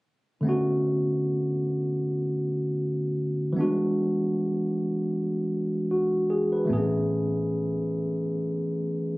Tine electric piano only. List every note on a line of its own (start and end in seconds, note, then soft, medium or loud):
0.41 3.50 D3 medium
0.41 3.51 A3 medium
0.41 3.52 B3 medium
0.47 3.53 C#4 medium
0.47 3.54 F#4 medium
3.53 6.62 E3 medium
3.53 3.63 G3 soft
3.53 6.64 B3 medium
3.59 6.66 G#3 medium
3.59 6.65 D4 medium
3.59 5.88 F#4 medium
5.91 6.28 F#4 soft
6.30 6.51 G#4 medium
6.52 6.89 B4 soft
6.65 9.18 E3 medium
6.65 9.18 A3 medium
6.69 9.18 B3 medium
6.69 6.77 C4 soft
6.69 9.18 G#4 medium
6.78 9.18 C#4 medium